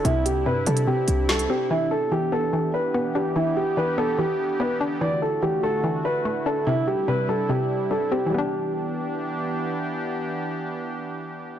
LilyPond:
<<
  \new Staff \with { instrumentName = "Grand piano" } { \time 4/4 \key e \minor \tempo 4 = 145 e'8 g'8 b'8 a'8 g'4 a'8 g'8 | e'8 a'8 g'8 a'4 b'4 g'8 | e'8 g'8 b'8 a'8 g'4 b'8 r8 | d''8 a'8 g'8 a'4 b'4 a'8 |
e'8 g'8 b'8 a'8 g'4 a'8 g'8 | g'2. r4 | r1 | }
  \new Staff \with { instrumentName = "Analog synth pad" } { \time 4/4 \key e \minor << { <c c'>1 | <e b g'>1~ | <e b g'>1 | <d a fis'>1 |
<c g>1 | <e b d' g'>1~ | <e b d' g'>1 | } \\ { <d' e'>1~ | <d' e'>1~ | <d' e'>1 | e'1 |
d'1 | r1 | r1 | } >> }
  \new Staff \with { instrumentName = "Synth pluck" } { \clef bass \time 4/4 \key e \minor c4 c8 g8 c4 g8 c'8 | e4 e8 b8 e4 b8 d'8 | e4 e8 b8 e4 b8 d'8 | e4 e8 a8 e4 a8 d'8 |
c4 c8 g8 c4 g8 c'8 | <e g b d'>1~ | <e g b d'>1 | }
  \new Staff \with { instrumentName = "808-style bass" } { \clef bass \time 4/4 \key e \minor c,4 g,8 c8 r8 c,4 r8 | r1 | r1 | r1 |
r1 | r1 | r1 | }
  \new DrumStaff \with { instrumentName = "Drums" } \drummode { \time 4/4 hh8 hh8 r8 hh16 hh16 r8 hh8 sn16 hh8. | r4 r4 r4 r4 | r4 r4 r4 r4 | r4 r4 r4 r4 |
r4 r4 r4 r4 | r4 r4 r4 r4 | r4 r4 r4 r4 | }
>>